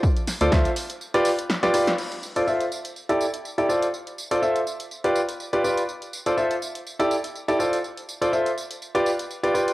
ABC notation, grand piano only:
X:1
M:4/4
L:1/16
Q:"Swing 16ths" 1/4=123
K:Ddor
V:1 name="Grand piano"
z3 [FAcd] [Fce] z4 [FGBd] z3 [FGBd] [FGBd] z | z3 [FAcd] [FAce] z4 [EGAd] z3 [EGAd] [FAcd] z | z3 [FAcd] [FAce] z4 [FGBd] z3 [FGBd] [FGBd] z | z3 [FAcd] [FAce] z4 [EGAd] z3 [EGAd] [FAcd] z |
z3 [FAcd] [FAce] z4 [FGBd] z3 [FGBd] [FGBd] z |]